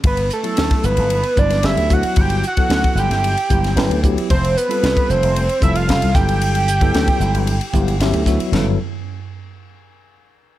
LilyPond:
<<
  \new Staff \with { instrumentName = "Analog synth lead" } { \time 4/4 \key g \major \tempo 4 = 113 b'8 a'4 b'4 d''8 e''8 fis''8 | g''8 fis''4 g''2 r8 | c''8 b'4 c''4 e''16 f''8. g''8~ | g''2. r4 |
r1 | }
  \new Staff \with { instrumentName = "Tine electric piano" } { \time 4/4 \key g \major << { r1 | r1 | r1 | r2 \tuplet 3/2 { r8. g''16 fis''8 } e''8 e''8 |
r1 | } \\ { r8. <fis b e' a'>4. r16 <fis b e' b'>8 <fis b e' g'>8 <fis b e' fis'>8~ | <fis b e' fis'>8 r16 <fis b e' a'>4. r16 <fis b e' g'>8 <fis b e' b'>8 <fis b e' g'>8 | r8. <g c' f' a'>4. r16 <g c' f' a'>8 <g c' f' a'>8 <fis b e' a'>8~ | <fis b e' a'>8 r16 <fis b e' a'>4. r16 <fis b e' g'>8 <fis b e' g'>8 <fis b e' fis'>8 |
<fis b e' a'>8 r2. r8 | } >> }
  \new Staff \with { instrumentName = "Slap bass" } { \clef bass \time 4/4 \key g \major g,,8 r8 d,16 r16 g,,16 g,,8 r16 g,,8 g,,16 d,8 r16 | g,,8 r8 d,16 r16 g,,16 g,,8 r16 g,,8 g,,16 d,8 r16 | f,,8 r8 c,16 r16 f,,16 f,,8 r16 f,,8 f,,16 c,16 g,,8~ | g,,4 d,16 r16 g,,16 g,,8 r16 g,,8 g,,16 d,8 r16 |
g,,8 r2. r8 | }
  \new DrumStaff \with { instrumentName = "Drums" } \drummode { \time 4/4 <bd cymr>16 cymr16 hhp16 cymr16 <cymr sn>16 <bd cymr sn>16 hhp16 cymr16 cymr16 cymr16 <hhp bd>16 <cymr sn>16 <cymr sn>16 cymr16 <hhp bd>16 cymr16 | <bd cymr>16 cymr16 hhp16 <bd cymr>16 <cymr sn>16 <bd cymr>16 hhp16 <cymr sn>16 cymr16 cymr16 <hhp bd>16 <cymr sn>16 <cymr sn>16 cymr16 <hhp bd>16 cymr16 | <bd cymr>16 cymr16 hhp16 cymr16 <cymr sn>16 <bd cymr>16 hhp16 cymr16 cymr16 cymr16 <hhp bd>16 cymr16 <cymr sn>16 cymr16 <hhp bd sn>16 cymr16 | cymr16 cymr16 hhp16 <bd cymr>16 <cymr sn>16 <bd cymr>16 hhp16 cymr16 cymr16 cymr16 <hhp bd>16 cymr16 <cymr sn>16 cymr16 <hhp bd sn>16 cymr16 |
<cymc sn tomfh>4 r4 r4 r4 | }
>>